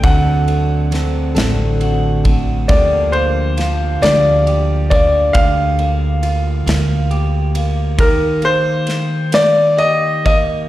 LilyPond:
<<
  \new Staff \with { instrumentName = "Grand piano" } { \time 6/8 \key g \minor \tempo 4. = 45 fis''2 r4 | d''8 c''4 d''4 d''8 | f''2 r4 | bes'8 c''4 d''8 ees''8 ees''8 | }
  \new Staff \with { instrumentName = "Steel-string acoustic guitar" } { \time 6/8 \key g \minor <d fis c' d' a'>4 <fis c' d' a'>8 <d fis c' d' a'>4 <c' d' a'>8 | <d f bes d' g'>4 <f bes d' g'>8 <d f bes d' g'>4 <bes d' g'>8 | r2. | r2. | }
  \new Staff \with { instrumentName = "Clean electric guitar" } { \time 6/8 \key g \minor <d a c' fis'>8 a8 c'8 a8 fis'8 a8 | <d g'>8 bes8 f'8 bes8 g'8 bes8 | <d g'>8 bes8 f'8 bes8 g'8 bes8 | <ees g'>8 bes4 bes8 g'8 bes8 | }
  \new Staff \with { instrumentName = "Upright bass" } { \clef bass \time 6/8 \key g \minor d,4. a,,4. | d,4. d,4. | d,4. d,4. | r2. | }
  \new DrumStaff \with { instrumentName = "Drums" } \drummode { \time 6/8 <bd cymr>8 cymr8 <cymr sn>8 <cymr sn>8 cymr8 <bd cymr>8 | <bd cymr>8 cymr8 <cymr sn>8 <cymr sn>8 cymr8 <bd cymr>8 | <bd cymr>8 cymr8 cymr8 <cymr sn>8 cymr8 cymr8 | <bd cymr>8 cymr8 <cymr sn>8 <cymr sn>8 cymr8 <bd cymr>8 | }
>>